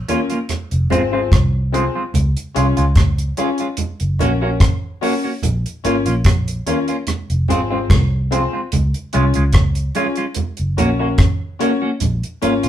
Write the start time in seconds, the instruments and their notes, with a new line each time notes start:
0.08 clean electric guitar A#3 C#4 F4, upright piano C#4 F4 A#4 C#5, closed hi-hat, high conga
0.30 clean electric guitar A#3 C#4 F4, closed hi-hat
0.49 cross-stick, closed hi-hat, low conga
0.71 fingered electric bass F1, closed hi-hat
0.90 fingered electric bass G#1, clean electric guitar G#3 C4 F4, upright piano C4 F4 G#4 C5, closed hi-hat, low conga
1.12 clean electric guitar G#3 C4 F4, upright piano C4 F4 G#4 C5
1.32 fingered electric bass C2, kick, cross-stick, closed hi-hat, high conga
1.72 clean electric guitar G#3 C4 F4, upright piano C4 F4 G#4 C5, closed hi-hat
1.95 clean electric guitar G#3 C4 F4
2.14 fingered electric bass C#2, closed hi-hat, low conga
2.37 closed hi-hat
2.54 fingered electric bass C2, clean electric guitar G#3 C#4 F4, upright piano C#4 F4 G#4 C#5, closed hi-hat
2.77 fingered electric bass C#2, clean electric guitar G#3 C#4 F4, closed hi-hat
2.95 kick, cross-stick, closed hi-hat
3.18 closed hi-hat
3.37 clean electric guitar G#3 C#4 F4, upright piano C#4 F4 G#4 C#5, closed hi-hat
3.58 clean electric guitar G#3 C#4 F4, closed hi-hat
3.77 closed hi-hat, low conga
4.00 fingered electric bass F#1, closed hi-hat
4.19 fingered electric bass A#1, clean electric guitar A#3 C#4 F#4, upright piano C#4 F#4 A#4 C#5, closed hi-hat, low conga
4.41 clean electric guitar A#3 C#4 F#4, upright piano C#4 F#4 A#4 C#5
4.60 kick, cross-stick, closed hi-hat, high conga
5.01 clean electric guitar A#3 C#4 F#4, upright piano C#4 F#4 A#4 C#5, open hi-hat
5.24 clean electric guitar A#3 C#4 F#4
5.43 fingered electric bass A#1, closed hi-hat, low conga
5.66 closed hi-hat
5.84 fingered electric bass G#1, clean electric guitar A#3 C#4 F4, upright piano C#4 F4 A#4 C#5, closed hi-hat
6.06 fingered electric bass A#1, clean electric guitar A#3 C#4 F4, closed hi-hat
6.24 kick, cross-stick, closed hi-hat
6.48 closed hi-hat
6.66 clean electric guitar A#3 C#4 F4, upright piano C#4 F4 A#4 C#5, closed hi-hat, high conga
6.88 clean electric guitar A#3 C#4 F4, closed hi-hat
7.07 cross-stick, closed hi-hat, low conga
7.30 fingered electric bass F1, closed hi-hat
7.48 fingered electric bass G#1, clean electric guitar G#3 C4 F4, upright piano C4 F4 G#4 C5, closed hi-hat, low conga
7.70 clean electric guitar G#3 C4 F4, upright piano C4 F4 G#4 C5
7.90 fingered electric bass C2, kick, cross-stick, closed hi-hat, high conga
8.31 clean electric guitar G#3 C4 F4, upright piano C4 F4 G#4 C5, closed hi-hat
8.53 clean electric guitar G#3 C4 F4
8.72 fingered electric bass C#2, closed hi-hat, low conga
8.94 closed hi-hat
9.13 fingered electric bass C2, clean electric guitar G#3 C#4 F4, upright piano C#4 F4 G#4 C#5, closed hi-hat
9.34 fingered electric bass C#2, clean electric guitar G#3 C#4 F4, closed hi-hat
9.53 kick, cross-stick, closed hi-hat
9.75 closed hi-hat
9.95 clean electric guitar G#3 C#4 F4, upright piano C#4 F4 G#4 C#5, closed hi-hat
10.16 clean electric guitar G#3 C#4 F4, closed hi-hat
10.35 closed hi-hat, low conga
10.57 fingered electric bass F#1, closed hi-hat
10.77 fingered electric bass A#1, clean electric guitar A#3 C#4 F#4, upright piano C#4 F#4 A#4 C#5, closed hi-hat, low conga
10.99 clean electric guitar A#3 C#4 F#4, upright piano C#4 F#4 A#4 C#5
11.18 kick, cross-stick, closed hi-hat, high conga
11.59 clean electric guitar A#3 C#4 F#4, upright piano C#4 F#4 A#4 C#5, closed hi-hat
11.82 clean electric guitar A#3 C#4 F#4
12.00 fingered electric bass A#1, closed hi-hat, low conga
12.23 closed hi-hat
12.42 fingered electric bass G#1, clean electric guitar A#3 C#4 F4, upright piano C#4 F4 A#4 C#5, closed hi-hat
12.63 fingered electric bass A#1, clean electric guitar A#3 C#4 F4, closed hi-hat